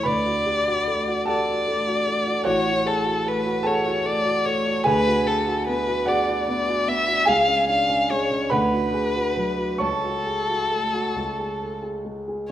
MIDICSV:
0, 0, Header, 1, 3, 480
1, 0, Start_track
1, 0, Key_signature, 3, "minor"
1, 0, Tempo, 804290
1, 36, Time_signature, 6, 3, 24, 8
1, 4836, Tempo, 853485
1, 5796, Tempo, 892857
1, 7251, End_track
2, 0, Start_track
2, 0, Title_t, "Violin"
2, 0, Program_c, 0, 40
2, 38, Note_on_c, 0, 74, 88
2, 767, Note_off_c, 0, 74, 0
2, 772, Note_on_c, 0, 74, 83
2, 1468, Note_off_c, 0, 74, 0
2, 1476, Note_on_c, 0, 73, 85
2, 1712, Note_on_c, 0, 69, 75
2, 1721, Note_off_c, 0, 73, 0
2, 1957, Note_on_c, 0, 71, 77
2, 1966, Note_off_c, 0, 69, 0
2, 2186, Note_on_c, 0, 73, 75
2, 2195, Note_off_c, 0, 71, 0
2, 2421, Note_on_c, 0, 74, 89
2, 2430, Note_off_c, 0, 73, 0
2, 2662, Note_on_c, 0, 73, 86
2, 2671, Note_off_c, 0, 74, 0
2, 2901, Note_off_c, 0, 73, 0
2, 2904, Note_on_c, 0, 71, 100
2, 3145, Note_on_c, 0, 69, 78
2, 3154, Note_off_c, 0, 71, 0
2, 3385, Note_off_c, 0, 69, 0
2, 3389, Note_on_c, 0, 71, 83
2, 3630, Note_on_c, 0, 74, 75
2, 3639, Note_off_c, 0, 71, 0
2, 3862, Note_off_c, 0, 74, 0
2, 3866, Note_on_c, 0, 74, 87
2, 4107, Note_on_c, 0, 76, 99
2, 4116, Note_off_c, 0, 74, 0
2, 4349, Note_on_c, 0, 77, 93
2, 4358, Note_off_c, 0, 76, 0
2, 4588, Note_off_c, 0, 77, 0
2, 4591, Note_on_c, 0, 77, 88
2, 4838, Note_on_c, 0, 73, 79
2, 4846, Note_off_c, 0, 77, 0
2, 5068, Note_on_c, 0, 71, 74
2, 5076, Note_off_c, 0, 73, 0
2, 5797, Note_on_c, 0, 69, 83
2, 5805, Note_off_c, 0, 71, 0
2, 6878, Note_off_c, 0, 69, 0
2, 7251, End_track
3, 0, Start_track
3, 0, Title_t, "Grand piano"
3, 0, Program_c, 1, 0
3, 0, Control_c, 1, 64, 127
3, 20, Note_on_c, 1, 83, 99
3, 27, Note_on_c, 1, 71, 75
3, 33, Note_on_c, 1, 38, 62
3, 47, Control_c, 1, 64, 0
3, 136, Control_c, 1, 64, 127
3, 155, Note_on_c, 1, 66, 48
3, 276, Note_on_c, 1, 67, 53
3, 351, Note_off_c, 1, 66, 0
3, 399, Note_off_c, 1, 67, 0
3, 403, Note_on_c, 1, 66, 59
3, 522, Note_on_c, 1, 57, 61
3, 597, Note_off_c, 1, 66, 0
3, 640, Note_on_c, 1, 66, 67
3, 717, Note_off_c, 1, 57, 0
3, 737, Note_off_c, 1, 71, 0
3, 749, Note_on_c, 1, 81, 106
3, 757, Note_on_c, 1, 69, 86
3, 757, Note_on_c, 1, 78, 78
3, 758, Note_off_c, 1, 83, 0
3, 764, Note_on_c, 1, 67, 51
3, 836, Note_off_c, 1, 66, 0
3, 885, Note_off_c, 1, 67, 0
3, 886, Note_on_c, 1, 66, 55
3, 1003, Note_on_c, 1, 57, 64
3, 1077, Note_off_c, 1, 66, 0
3, 1119, Note_on_c, 1, 66, 64
3, 1195, Note_off_c, 1, 57, 0
3, 1235, Note_on_c, 1, 57, 64
3, 1311, Note_off_c, 1, 66, 0
3, 1355, Note_on_c, 1, 66, 66
3, 1428, Note_off_c, 1, 57, 0
3, 1445, Note_off_c, 1, 78, 0
3, 1451, Note_off_c, 1, 69, 0
3, 1454, Note_off_c, 1, 38, 0
3, 1454, Note_off_c, 1, 66, 0
3, 1454, Note_on_c, 1, 78, 100
3, 1459, Note_on_c, 1, 73, 83
3, 1463, Note_on_c, 1, 66, 86
3, 1469, Note_on_c, 1, 33, 70
3, 1471, Note_off_c, 1, 81, 0
3, 1489, Control_c, 1, 64, 0
3, 1578, Control_c, 1, 64, 127
3, 1582, Note_off_c, 1, 66, 0
3, 1591, Note_on_c, 1, 66, 56
3, 1704, Note_on_c, 1, 68, 65
3, 1783, Note_off_c, 1, 66, 0
3, 1825, Note_on_c, 1, 66, 60
3, 1828, Note_off_c, 1, 68, 0
3, 1946, Note_on_c, 1, 57, 67
3, 2019, Note_off_c, 1, 66, 0
3, 2062, Note_on_c, 1, 66, 72
3, 2139, Note_off_c, 1, 57, 0
3, 2156, Note_off_c, 1, 73, 0
3, 2162, Note_off_c, 1, 78, 0
3, 2166, Note_on_c, 1, 81, 114
3, 2171, Note_on_c, 1, 78, 82
3, 2172, Note_on_c, 1, 69, 84
3, 2180, Note_on_c, 1, 68, 59
3, 2257, Note_off_c, 1, 66, 0
3, 2304, Note_off_c, 1, 68, 0
3, 2305, Note_on_c, 1, 66, 70
3, 2420, Note_on_c, 1, 57, 63
3, 2497, Note_off_c, 1, 66, 0
3, 2539, Note_on_c, 1, 66, 67
3, 2614, Note_off_c, 1, 57, 0
3, 2664, Note_on_c, 1, 57, 66
3, 2734, Note_off_c, 1, 66, 0
3, 2782, Note_on_c, 1, 66, 59
3, 2856, Note_off_c, 1, 57, 0
3, 2872, Note_off_c, 1, 69, 0
3, 2872, Note_off_c, 1, 78, 0
3, 2876, Note_off_c, 1, 33, 0
3, 2887, Note_on_c, 1, 80, 125
3, 2893, Note_off_c, 1, 81, 0
3, 2893, Note_on_c, 1, 68, 89
3, 2902, Note_on_c, 1, 38, 88
3, 2903, Note_off_c, 1, 66, 0
3, 2914, Control_c, 1, 64, 0
3, 3011, Control_c, 1, 64, 127
3, 3027, Note_on_c, 1, 66, 69
3, 3137, Note_off_c, 1, 68, 0
3, 3146, Note_on_c, 1, 68, 65
3, 3219, Note_off_c, 1, 66, 0
3, 3265, Note_on_c, 1, 66, 69
3, 3267, Note_off_c, 1, 68, 0
3, 3389, Note_on_c, 1, 59, 68
3, 3460, Note_off_c, 1, 66, 0
3, 3505, Note_on_c, 1, 66, 71
3, 3582, Note_off_c, 1, 59, 0
3, 3610, Note_off_c, 1, 66, 0
3, 3614, Note_on_c, 1, 78, 106
3, 3618, Note_on_c, 1, 66, 77
3, 3620, Note_off_c, 1, 80, 0
3, 3620, Note_on_c, 1, 74, 93
3, 3627, Note_on_c, 1, 68, 60
3, 3741, Note_off_c, 1, 66, 0
3, 3748, Note_off_c, 1, 68, 0
3, 3749, Note_on_c, 1, 66, 72
3, 3869, Note_on_c, 1, 59, 76
3, 3940, Note_off_c, 1, 66, 0
3, 3987, Note_on_c, 1, 66, 66
3, 4059, Note_off_c, 1, 59, 0
3, 4105, Note_on_c, 1, 59, 64
3, 4179, Note_off_c, 1, 66, 0
3, 4222, Note_on_c, 1, 66, 60
3, 4299, Note_off_c, 1, 59, 0
3, 4320, Note_off_c, 1, 74, 0
3, 4323, Note_off_c, 1, 38, 0
3, 4328, Note_on_c, 1, 80, 121
3, 4336, Note_on_c, 1, 68, 90
3, 4336, Note_on_c, 1, 77, 89
3, 4341, Note_off_c, 1, 78, 0
3, 4344, Note_on_c, 1, 37, 80
3, 4346, Note_off_c, 1, 66, 0
3, 4359, Control_c, 1, 64, 0
3, 4453, Control_c, 1, 64, 127
3, 4462, Note_on_c, 1, 61, 64
3, 4589, Note_on_c, 1, 62, 60
3, 4662, Note_off_c, 1, 61, 0
3, 4710, Note_on_c, 1, 61, 63
3, 4713, Note_off_c, 1, 62, 0
3, 4836, Note_on_c, 1, 56, 67
3, 4906, Note_off_c, 1, 61, 0
3, 4949, Note_on_c, 1, 61, 73
3, 5024, Note_off_c, 1, 56, 0
3, 5043, Note_off_c, 1, 68, 0
3, 5043, Note_off_c, 1, 77, 0
3, 5049, Note_off_c, 1, 37, 0
3, 5057, Note_on_c, 1, 83, 120
3, 5061, Note_on_c, 1, 71, 85
3, 5062, Note_off_c, 1, 80, 0
3, 5064, Note_on_c, 1, 78, 81
3, 5068, Note_on_c, 1, 38, 83
3, 5069, Note_off_c, 1, 61, 0
3, 5082, Control_c, 1, 64, 0
3, 5166, Control_c, 1, 64, 127
3, 5187, Note_on_c, 1, 66, 60
3, 5303, Note_on_c, 1, 68, 60
3, 5379, Note_off_c, 1, 66, 0
3, 5426, Note_off_c, 1, 68, 0
3, 5427, Note_on_c, 1, 66, 59
3, 5548, Note_on_c, 1, 54, 52
3, 5624, Note_off_c, 1, 66, 0
3, 5667, Note_on_c, 1, 66, 53
3, 5747, Note_off_c, 1, 54, 0
3, 5771, Note_off_c, 1, 71, 0
3, 5773, Note_off_c, 1, 78, 0
3, 5775, Note_off_c, 1, 38, 0
3, 5781, Note_on_c, 1, 85, 109
3, 5790, Note_on_c, 1, 73, 69
3, 5790, Note_on_c, 1, 81, 81
3, 5792, Note_off_c, 1, 83, 0
3, 5794, Note_on_c, 1, 37, 64
3, 5795, Note_off_c, 1, 66, 0
3, 5808, Control_c, 1, 64, 0
3, 5909, Control_c, 1, 64, 127
3, 5919, Note_on_c, 1, 66, 54
3, 6036, Note_on_c, 1, 68, 54
3, 6113, Note_off_c, 1, 66, 0
3, 6159, Note_off_c, 1, 68, 0
3, 6162, Note_on_c, 1, 66, 52
3, 6282, Note_on_c, 1, 57, 57
3, 6355, Note_off_c, 1, 66, 0
3, 6400, Note_on_c, 1, 66, 64
3, 6474, Note_off_c, 1, 57, 0
3, 6497, Note_off_c, 1, 37, 0
3, 6520, Note_off_c, 1, 66, 0
3, 6521, Note_on_c, 1, 37, 70
3, 6529, Control_c, 1, 64, 0
3, 6612, Control_c, 1, 64, 127
3, 6645, Note_on_c, 1, 68, 55
3, 6759, Note_on_c, 1, 69, 48
3, 6833, Note_off_c, 1, 68, 0
3, 6879, Note_off_c, 1, 69, 0
3, 6879, Note_on_c, 1, 68, 52
3, 6975, Note_off_c, 1, 73, 0
3, 6975, Note_off_c, 1, 81, 0
3, 6992, Note_off_c, 1, 85, 0
3, 6999, Note_on_c, 1, 56, 52
3, 7074, Note_off_c, 1, 68, 0
3, 7123, Note_on_c, 1, 68, 57
3, 7192, Note_off_c, 1, 56, 0
3, 7218, Note_off_c, 1, 37, 0
3, 7241, Note_off_c, 1, 68, 0
3, 7250, Control_c, 1, 64, 0
3, 7251, End_track
0, 0, End_of_file